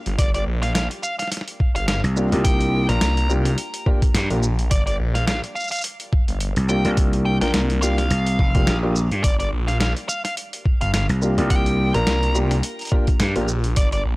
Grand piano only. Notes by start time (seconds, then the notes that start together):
2.16 A#3 D4 F4 G4
2.32 A#3 D4 F4 G4
2.89 A#3 D4 F4 A#4
3.29 A#3 D4 F4 G4
3.86 A#3 D4 F4 G4
4.30 A#3 D4 F4 G4
6.69 A#3 D4 F4 G4
6.85 A#3 D4 F4 G4
7.42 A#3 D4 F4 A#4
7.82 A#3 D4 F4 G4
8.55 A#3 D4 F4 G4
8.83 A#3 D4 F4 G4
11.22 A#3 D4 F4 G4
11.38 A#3 D4 F4 G4
11.94 A#3 D4 F4 A#4
12.35 A#3 D4 F4 G4
12.92 A#3 D4 F4 G4
13.36 A#3 D4 F4 G4